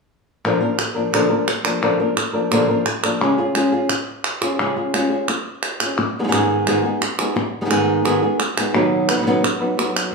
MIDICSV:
0, 0, Header, 1, 4, 480
1, 0, Start_track
1, 0, Tempo, 346220
1, 616, Time_signature, 4, 2, 24, 8
1, 14071, End_track
2, 0, Start_track
2, 0, Title_t, "Nylon-string guitar"
2, 0, Program_c, 0, 24
2, 617, Note_on_c, 0, 46, 77
2, 624, Note_on_c, 0, 50, 75
2, 630, Note_on_c, 0, 53, 88
2, 638, Note_on_c, 0, 58, 81
2, 642, Note_on_c, 0, 62, 74
2, 646, Note_on_c, 0, 70, 88
2, 821, Note_off_c, 0, 70, 0
2, 838, Note_on_c, 0, 70, 50
2, 841, Note_off_c, 0, 62, 0
2, 843, Note_off_c, 0, 58, 0
2, 846, Note_off_c, 0, 46, 0
2, 850, Note_off_c, 0, 50, 0
2, 853, Note_off_c, 0, 53, 0
2, 857, Note_on_c, 0, 62, 44
2, 860, Note_on_c, 0, 58, 50
2, 873, Note_on_c, 0, 53, 40
2, 1074, Note_off_c, 0, 53, 0
2, 1076, Note_off_c, 0, 58, 0
2, 1077, Note_off_c, 0, 70, 0
2, 1080, Note_off_c, 0, 62, 0
2, 1313, Note_on_c, 0, 70, 46
2, 1331, Note_on_c, 0, 62, 47
2, 1341, Note_on_c, 0, 58, 46
2, 1355, Note_on_c, 0, 53, 42
2, 1554, Note_off_c, 0, 70, 0
2, 1557, Note_off_c, 0, 53, 0
2, 1558, Note_on_c, 0, 46, 70
2, 1563, Note_off_c, 0, 58, 0
2, 1563, Note_off_c, 0, 62, 0
2, 1568, Note_on_c, 0, 50, 93
2, 1574, Note_on_c, 0, 53, 82
2, 1580, Note_on_c, 0, 58, 85
2, 1585, Note_on_c, 0, 62, 94
2, 1590, Note_on_c, 0, 70, 91
2, 1781, Note_off_c, 0, 70, 0
2, 1790, Note_off_c, 0, 62, 0
2, 1796, Note_off_c, 0, 46, 0
2, 1797, Note_on_c, 0, 70, 52
2, 1799, Note_off_c, 0, 58, 0
2, 1801, Note_off_c, 0, 50, 0
2, 1804, Note_off_c, 0, 53, 0
2, 1807, Note_on_c, 0, 62, 54
2, 1816, Note_on_c, 0, 58, 49
2, 1834, Note_on_c, 0, 53, 43
2, 2036, Note_off_c, 0, 70, 0
2, 2038, Note_off_c, 0, 53, 0
2, 2041, Note_off_c, 0, 62, 0
2, 2042, Note_off_c, 0, 58, 0
2, 2281, Note_on_c, 0, 70, 51
2, 2290, Note_on_c, 0, 62, 54
2, 2301, Note_on_c, 0, 58, 45
2, 2312, Note_on_c, 0, 53, 43
2, 2512, Note_off_c, 0, 53, 0
2, 2516, Note_off_c, 0, 58, 0
2, 2517, Note_off_c, 0, 70, 0
2, 2518, Note_on_c, 0, 46, 66
2, 2522, Note_off_c, 0, 62, 0
2, 2524, Note_on_c, 0, 50, 69
2, 2528, Note_on_c, 0, 53, 75
2, 2533, Note_on_c, 0, 58, 73
2, 2540, Note_on_c, 0, 62, 77
2, 2544, Note_on_c, 0, 70, 82
2, 2752, Note_off_c, 0, 70, 0
2, 2756, Note_off_c, 0, 46, 0
2, 2759, Note_off_c, 0, 50, 0
2, 2760, Note_off_c, 0, 62, 0
2, 2761, Note_off_c, 0, 53, 0
2, 2763, Note_off_c, 0, 58, 0
2, 2768, Note_on_c, 0, 70, 59
2, 2776, Note_on_c, 0, 62, 45
2, 2789, Note_on_c, 0, 58, 45
2, 2800, Note_on_c, 0, 53, 44
2, 2989, Note_off_c, 0, 53, 0
2, 2996, Note_off_c, 0, 58, 0
2, 3001, Note_off_c, 0, 70, 0
2, 3005, Note_off_c, 0, 62, 0
2, 3235, Note_on_c, 0, 70, 51
2, 3246, Note_on_c, 0, 62, 48
2, 3253, Note_on_c, 0, 58, 46
2, 3265, Note_on_c, 0, 53, 44
2, 3474, Note_off_c, 0, 70, 0
2, 3478, Note_off_c, 0, 53, 0
2, 3479, Note_on_c, 0, 46, 84
2, 3480, Note_off_c, 0, 62, 0
2, 3483, Note_off_c, 0, 58, 0
2, 3488, Note_on_c, 0, 50, 86
2, 3495, Note_on_c, 0, 53, 83
2, 3503, Note_on_c, 0, 58, 94
2, 3509, Note_on_c, 0, 70, 90
2, 3511, Note_on_c, 0, 62, 89
2, 3704, Note_off_c, 0, 70, 0
2, 3714, Note_off_c, 0, 62, 0
2, 3716, Note_off_c, 0, 46, 0
2, 3720, Note_on_c, 0, 70, 54
2, 3721, Note_off_c, 0, 50, 0
2, 3724, Note_off_c, 0, 53, 0
2, 3724, Note_off_c, 0, 58, 0
2, 3731, Note_on_c, 0, 62, 50
2, 3741, Note_on_c, 0, 58, 51
2, 3748, Note_on_c, 0, 53, 48
2, 3947, Note_off_c, 0, 53, 0
2, 3953, Note_off_c, 0, 62, 0
2, 3956, Note_off_c, 0, 58, 0
2, 3956, Note_off_c, 0, 70, 0
2, 4205, Note_on_c, 0, 70, 56
2, 4221, Note_on_c, 0, 62, 48
2, 4233, Note_on_c, 0, 58, 48
2, 4237, Note_on_c, 0, 53, 47
2, 4438, Note_off_c, 0, 70, 0
2, 4446, Note_off_c, 0, 62, 0
2, 4449, Note_on_c, 0, 49, 68
2, 4453, Note_off_c, 0, 58, 0
2, 4455, Note_off_c, 0, 53, 0
2, 4460, Note_on_c, 0, 56, 72
2, 4467, Note_on_c, 0, 61, 74
2, 4478, Note_on_c, 0, 65, 79
2, 4480, Note_on_c, 0, 68, 78
2, 4671, Note_off_c, 0, 68, 0
2, 4680, Note_off_c, 0, 49, 0
2, 4685, Note_off_c, 0, 65, 0
2, 4686, Note_off_c, 0, 56, 0
2, 4687, Note_on_c, 0, 68, 58
2, 4690, Note_off_c, 0, 61, 0
2, 4702, Note_on_c, 0, 65, 48
2, 4721, Note_on_c, 0, 61, 44
2, 4914, Note_off_c, 0, 61, 0
2, 4914, Note_on_c, 0, 56, 61
2, 4919, Note_off_c, 0, 65, 0
2, 4920, Note_off_c, 0, 68, 0
2, 4931, Note_on_c, 0, 61, 63
2, 4935, Note_on_c, 0, 65, 64
2, 4952, Note_on_c, 0, 68, 64
2, 5140, Note_off_c, 0, 68, 0
2, 5153, Note_off_c, 0, 56, 0
2, 5155, Note_off_c, 0, 65, 0
2, 5156, Note_on_c, 0, 68, 53
2, 5161, Note_off_c, 0, 61, 0
2, 5172, Note_on_c, 0, 65, 50
2, 5194, Note_on_c, 0, 61, 44
2, 5392, Note_off_c, 0, 61, 0
2, 5394, Note_off_c, 0, 68, 0
2, 5395, Note_off_c, 0, 65, 0
2, 6119, Note_on_c, 0, 68, 54
2, 6134, Note_on_c, 0, 65, 52
2, 6153, Note_on_c, 0, 61, 40
2, 6355, Note_off_c, 0, 68, 0
2, 6362, Note_off_c, 0, 65, 0
2, 6364, Note_on_c, 0, 49, 68
2, 6365, Note_off_c, 0, 61, 0
2, 6376, Note_on_c, 0, 56, 77
2, 6381, Note_on_c, 0, 61, 65
2, 6390, Note_on_c, 0, 65, 74
2, 6399, Note_on_c, 0, 68, 81
2, 6589, Note_off_c, 0, 68, 0
2, 6597, Note_off_c, 0, 49, 0
2, 6603, Note_off_c, 0, 56, 0
2, 6605, Note_off_c, 0, 65, 0
2, 6606, Note_off_c, 0, 61, 0
2, 6606, Note_on_c, 0, 68, 56
2, 6621, Note_on_c, 0, 65, 47
2, 6637, Note_on_c, 0, 61, 40
2, 6833, Note_off_c, 0, 61, 0
2, 6838, Note_off_c, 0, 68, 0
2, 6841, Note_on_c, 0, 56, 54
2, 6846, Note_off_c, 0, 65, 0
2, 6850, Note_on_c, 0, 61, 65
2, 6861, Note_on_c, 0, 65, 68
2, 6873, Note_on_c, 0, 68, 67
2, 7052, Note_off_c, 0, 68, 0
2, 7069, Note_on_c, 0, 68, 44
2, 7072, Note_off_c, 0, 65, 0
2, 7076, Note_off_c, 0, 56, 0
2, 7080, Note_off_c, 0, 61, 0
2, 7089, Note_on_c, 0, 65, 44
2, 7109, Note_on_c, 0, 61, 39
2, 7310, Note_off_c, 0, 68, 0
2, 7319, Note_off_c, 0, 65, 0
2, 7320, Note_off_c, 0, 61, 0
2, 8052, Note_on_c, 0, 68, 54
2, 8064, Note_on_c, 0, 65, 44
2, 8082, Note_on_c, 0, 61, 43
2, 8281, Note_off_c, 0, 68, 0
2, 8287, Note_off_c, 0, 65, 0
2, 8295, Note_off_c, 0, 61, 0
2, 8584, Note_on_c, 0, 51, 55
2, 8590, Note_on_c, 0, 56, 59
2, 8594, Note_on_c, 0, 59, 64
2, 8594, Note_on_c, 0, 63, 63
2, 8597, Note_on_c, 0, 68, 63
2, 8632, Note_off_c, 0, 51, 0
2, 8637, Note_off_c, 0, 59, 0
2, 8638, Note_off_c, 0, 56, 0
2, 8640, Note_off_c, 0, 63, 0
2, 8643, Note_off_c, 0, 68, 0
2, 8649, Note_on_c, 0, 51, 62
2, 8653, Note_on_c, 0, 59, 62
2, 8655, Note_on_c, 0, 56, 71
2, 8656, Note_on_c, 0, 63, 70
2, 8659, Note_on_c, 0, 68, 63
2, 8688, Note_off_c, 0, 51, 0
2, 8693, Note_off_c, 0, 56, 0
2, 8698, Note_off_c, 0, 59, 0
2, 8704, Note_off_c, 0, 68, 0
2, 8705, Note_off_c, 0, 63, 0
2, 8705, Note_on_c, 0, 51, 77
2, 8710, Note_on_c, 0, 56, 69
2, 8714, Note_on_c, 0, 59, 76
2, 8721, Note_on_c, 0, 68, 92
2, 8722, Note_on_c, 0, 63, 78
2, 8754, Note_off_c, 0, 51, 0
2, 8760, Note_off_c, 0, 56, 0
2, 8761, Note_off_c, 0, 59, 0
2, 8769, Note_off_c, 0, 63, 0
2, 8769, Note_on_c, 0, 44, 84
2, 8770, Note_off_c, 0, 68, 0
2, 8770, Note_on_c, 0, 51, 83
2, 8777, Note_on_c, 0, 56, 76
2, 8778, Note_on_c, 0, 59, 78
2, 8786, Note_on_c, 0, 63, 100
2, 8786, Note_on_c, 0, 68, 101
2, 9225, Note_off_c, 0, 44, 0
2, 9234, Note_off_c, 0, 51, 0
2, 9239, Note_off_c, 0, 56, 0
2, 9241, Note_on_c, 0, 44, 87
2, 9243, Note_off_c, 0, 59, 0
2, 9247, Note_off_c, 0, 63, 0
2, 9248, Note_off_c, 0, 68, 0
2, 9251, Note_on_c, 0, 51, 89
2, 9256, Note_on_c, 0, 56, 86
2, 9262, Note_on_c, 0, 59, 73
2, 9270, Note_on_c, 0, 63, 81
2, 9273, Note_on_c, 0, 68, 87
2, 9456, Note_off_c, 0, 68, 0
2, 9470, Note_off_c, 0, 63, 0
2, 9473, Note_on_c, 0, 68, 51
2, 9475, Note_off_c, 0, 44, 0
2, 9480, Note_off_c, 0, 51, 0
2, 9482, Note_off_c, 0, 56, 0
2, 9486, Note_off_c, 0, 59, 0
2, 9487, Note_on_c, 0, 63, 58
2, 9500, Note_on_c, 0, 59, 46
2, 9505, Note_on_c, 0, 56, 47
2, 9710, Note_off_c, 0, 56, 0
2, 9711, Note_off_c, 0, 68, 0
2, 9713, Note_off_c, 0, 59, 0
2, 9718, Note_off_c, 0, 63, 0
2, 9964, Note_on_c, 0, 68, 51
2, 9980, Note_on_c, 0, 63, 49
2, 9988, Note_on_c, 0, 59, 49
2, 9998, Note_on_c, 0, 56, 48
2, 10196, Note_off_c, 0, 68, 0
2, 10204, Note_off_c, 0, 63, 0
2, 10208, Note_off_c, 0, 59, 0
2, 10213, Note_off_c, 0, 56, 0
2, 10552, Note_on_c, 0, 51, 53
2, 10556, Note_on_c, 0, 56, 55
2, 10563, Note_on_c, 0, 59, 55
2, 10563, Note_on_c, 0, 63, 63
2, 10563, Note_on_c, 0, 68, 56
2, 10594, Note_off_c, 0, 51, 0
2, 10601, Note_off_c, 0, 56, 0
2, 10602, Note_off_c, 0, 59, 0
2, 10611, Note_on_c, 0, 51, 73
2, 10612, Note_off_c, 0, 63, 0
2, 10612, Note_off_c, 0, 68, 0
2, 10618, Note_on_c, 0, 56, 73
2, 10619, Note_on_c, 0, 59, 71
2, 10629, Note_on_c, 0, 63, 77
2, 10629, Note_on_c, 0, 68, 77
2, 10663, Note_off_c, 0, 51, 0
2, 10666, Note_off_c, 0, 56, 0
2, 10669, Note_off_c, 0, 59, 0
2, 10670, Note_off_c, 0, 63, 0
2, 10672, Note_off_c, 0, 68, 0
2, 10678, Note_on_c, 0, 44, 78
2, 10679, Note_on_c, 0, 51, 98
2, 10683, Note_on_c, 0, 56, 89
2, 10686, Note_on_c, 0, 59, 91
2, 10687, Note_on_c, 0, 63, 104
2, 10688, Note_on_c, 0, 68, 102
2, 11130, Note_off_c, 0, 44, 0
2, 11139, Note_off_c, 0, 51, 0
2, 11147, Note_on_c, 0, 44, 78
2, 11148, Note_off_c, 0, 56, 0
2, 11153, Note_off_c, 0, 59, 0
2, 11155, Note_off_c, 0, 63, 0
2, 11156, Note_on_c, 0, 51, 99
2, 11159, Note_off_c, 0, 68, 0
2, 11164, Note_on_c, 0, 56, 76
2, 11169, Note_on_c, 0, 59, 85
2, 11171, Note_on_c, 0, 63, 85
2, 11184, Note_on_c, 0, 68, 107
2, 11378, Note_off_c, 0, 68, 0
2, 11388, Note_off_c, 0, 44, 0
2, 11389, Note_off_c, 0, 63, 0
2, 11393, Note_off_c, 0, 51, 0
2, 11395, Note_on_c, 0, 68, 54
2, 11397, Note_off_c, 0, 56, 0
2, 11399, Note_off_c, 0, 59, 0
2, 11406, Note_on_c, 0, 63, 55
2, 11416, Note_on_c, 0, 59, 47
2, 11429, Note_on_c, 0, 56, 44
2, 11625, Note_off_c, 0, 59, 0
2, 11626, Note_off_c, 0, 56, 0
2, 11632, Note_off_c, 0, 63, 0
2, 11632, Note_off_c, 0, 68, 0
2, 11886, Note_on_c, 0, 68, 49
2, 11898, Note_on_c, 0, 63, 55
2, 11913, Note_on_c, 0, 59, 51
2, 11923, Note_on_c, 0, 56, 46
2, 12118, Note_off_c, 0, 68, 0
2, 12118, Note_on_c, 0, 47, 84
2, 12123, Note_off_c, 0, 56, 0
2, 12124, Note_off_c, 0, 59, 0
2, 12124, Note_off_c, 0, 63, 0
2, 12127, Note_on_c, 0, 51, 79
2, 12129, Note_on_c, 0, 54, 78
2, 12141, Note_on_c, 0, 59, 83
2, 12141, Note_on_c, 0, 63, 77
2, 12148, Note_on_c, 0, 71, 75
2, 12579, Note_off_c, 0, 71, 0
2, 12595, Note_off_c, 0, 47, 0
2, 12595, Note_off_c, 0, 63, 0
2, 12595, Note_on_c, 0, 71, 64
2, 12599, Note_off_c, 0, 51, 0
2, 12600, Note_off_c, 0, 54, 0
2, 12606, Note_off_c, 0, 59, 0
2, 12611, Note_on_c, 0, 63, 58
2, 12622, Note_on_c, 0, 59, 58
2, 12629, Note_on_c, 0, 54, 47
2, 12707, Note_off_c, 0, 54, 0
2, 12715, Note_off_c, 0, 59, 0
2, 12720, Note_off_c, 0, 63, 0
2, 12720, Note_off_c, 0, 71, 0
2, 12722, Note_on_c, 0, 51, 45
2, 12724, Note_on_c, 0, 54, 50
2, 12732, Note_on_c, 0, 59, 50
2, 12736, Note_on_c, 0, 71, 54
2, 12737, Note_on_c, 0, 63, 60
2, 12768, Note_off_c, 0, 51, 0
2, 12774, Note_off_c, 0, 54, 0
2, 12780, Note_off_c, 0, 59, 0
2, 12781, Note_off_c, 0, 71, 0
2, 12782, Note_off_c, 0, 63, 0
2, 12785, Note_on_c, 0, 51, 65
2, 12791, Note_on_c, 0, 54, 69
2, 12796, Note_on_c, 0, 59, 55
2, 12798, Note_on_c, 0, 63, 56
2, 12798, Note_on_c, 0, 71, 70
2, 12835, Note_off_c, 0, 51, 0
2, 12835, Note_off_c, 0, 54, 0
2, 12839, Note_off_c, 0, 59, 0
2, 12840, Note_off_c, 0, 63, 0
2, 12846, Note_off_c, 0, 71, 0
2, 12849, Note_on_c, 0, 47, 83
2, 12852, Note_on_c, 0, 51, 77
2, 12852, Note_on_c, 0, 54, 82
2, 12856, Note_on_c, 0, 59, 75
2, 12857, Note_on_c, 0, 63, 85
2, 12862, Note_on_c, 0, 71, 100
2, 13067, Note_off_c, 0, 47, 0
2, 13067, Note_off_c, 0, 51, 0
2, 13077, Note_off_c, 0, 59, 0
2, 13078, Note_off_c, 0, 54, 0
2, 13081, Note_off_c, 0, 63, 0
2, 13087, Note_off_c, 0, 71, 0
2, 13311, Note_on_c, 0, 71, 60
2, 13320, Note_on_c, 0, 63, 54
2, 13328, Note_on_c, 0, 59, 51
2, 13342, Note_on_c, 0, 54, 43
2, 13531, Note_off_c, 0, 54, 0
2, 13548, Note_on_c, 0, 54, 54
2, 13550, Note_off_c, 0, 59, 0
2, 13552, Note_off_c, 0, 71, 0
2, 13556, Note_off_c, 0, 63, 0
2, 13567, Note_on_c, 0, 59, 52
2, 13572, Note_on_c, 0, 63, 45
2, 13585, Note_on_c, 0, 71, 55
2, 14026, Note_on_c, 0, 46, 66
2, 14031, Note_off_c, 0, 54, 0
2, 14041, Note_off_c, 0, 59, 0
2, 14044, Note_off_c, 0, 63, 0
2, 14050, Note_off_c, 0, 71, 0
2, 14071, Note_off_c, 0, 46, 0
2, 14071, End_track
3, 0, Start_track
3, 0, Title_t, "Muted nylon-string guitar strokes"
3, 1083, Note_on_c, 9, 29, 63
3, 1222, Note_off_c, 9, 29, 0
3, 2050, Note_on_c, 9, 29, 60
3, 2189, Note_off_c, 9, 29, 0
3, 3001, Note_on_c, 9, 29, 72
3, 3140, Note_off_c, 9, 29, 0
3, 3962, Note_on_c, 9, 29, 62
3, 4101, Note_off_c, 9, 29, 0
3, 5400, Note_on_c, 9, 29, 73
3, 5539, Note_off_c, 9, 29, 0
3, 7324, Note_on_c, 9, 29, 69
3, 7462, Note_off_c, 9, 29, 0
3, 8297, Note_on_c, 9, 29, 67
3, 8436, Note_off_c, 9, 29, 0
3, 9719, Note_on_c, 9, 29, 64
3, 9857, Note_off_c, 9, 29, 0
3, 10204, Note_on_c, 9, 29, 74
3, 10342, Note_off_c, 9, 29, 0
3, 11633, Note_on_c, 9, 29, 62
3, 11771, Note_off_c, 9, 29, 0
3, 13084, Note_on_c, 9, 29, 70
3, 13222, Note_off_c, 9, 29, 0
3, 14071, End_track
4, 0, Start_track
4, 0, Title_t, "Drums"
4, 1091, Note_on_c, 9, 39, 80
4, 1229, Note_off_c, 9, 39, 0
4, 1578, Note_on_c, 9, 39, 82
4, 1717, Note_off_c, 9, 39, 0
4, 2050, Note_on_c, 9, 39, 67
4, 2188, Note_off_c, 9, 39, 0
4, 2284, Note_on_c, 9, 39, 88
4, 2423, Note_off_c, 9, 39, 0
4, 3009, Note_on_c, 9, 39, 80
4, 3148, Note_off_c, 9, 39, 0
4, 3489, Note_on_c, 9, 39, 82
4, 3628, Note_off_c, 9, 39, 0
4, 3963, Note_on_c, 9, 39, 64
4, 4102, Note_off_c, 9, 39, 0
4, 4210, Note_on_c, 9, 39, 80
4, 4348, Note_off_c, 9, 39, 0
4, 4456, Note_on_c, 9, 39, 41
4, 4595, Note_off_c, 9, 39, 0
4, 4923, Note_on_c, 9, 39, 78
4, 5062, Note_off_c, 9, 39, 0
4, 5399, Note_on_c, 9, 39, 77
4, 5538, Note_off_c, 9, 39, 0
4, 5882, Note_on_c, 9, 39, 69
4, 6021, Note_off_c, 9, 39, 0
4, 6125, Note_on_c, 9, 39, 77
4, 6264, Note_off_c, 9, 39, 0
4, 6850, Note_on_c, 9, 39, 82
4, 6989, Note_off_c, 9, 39, 0
4, 7324, Note_on_c, 9, 39, 77
4, 7463, Note_off_c, 9, 39, 0
4, 7801, Note_on_c, 9, 39, 74
4, 7940, Note_off_c, 9, 39, 0
4, 8044, Note_on_c, 9, 39, 86
4, 8183, Note_off_c, 9, 39, 0
4, 8288, Note_on_c, 9, 39, 39
4, 8426, Note_off_c, 9, 39, 0
4, 8768, Note_on_c, 9, 39, 79
4, 8906, Note_off_c, 9, 39, 0
4, 9248, Note_on_c, 9, 39, 74
4, 9386, Note_off_c, 9, 39, 0
4, 9730, Note_on_c, 9, 39, 71
4, 9869, Note_off_c, 9, 39, 0
4, 9966, Note_on_c, 9, 39, 80
4, 10105, Note_off_c, 9, 39, 0
4, 10214, Note_on_c, 9, 39, 38
4, 10352, Note_off_c, 9, 39, 0
4, 10685, Note_on_c, 9, 39, 86
4, 10824, Note_off_c, 9, 39, 0
4, 11167, Note_on_c, 9, 39, 74
4, 11306, Note_off_c, 9, 39, 0
4, 11641, Note_on_c, 9, 39, 81
4, 11780, Note_off_c, 9, 39, 0
4, 11889, Note_on_c, 9, 39, 86
4, 12027, Note_off_c, 9, 39, 0
4, 12599, Note_on_c, 9, 39, 79
4, 12738, Note_off_c, 9, 39, 0
4, 13093, Note_on_c, 9, 39, 78
4, 13232, Note_off_c, 9, 39, 0
4, 13573, Note_on_c, 9, 39, 77
4, 13711, Note_off_c, 9, 39, 0
4, 13816, Note_on_c, 9, 39, 83
4, 13954, Note_off_c, 9, 39, 0
4, 14071, End_track
0, 0, End_of_file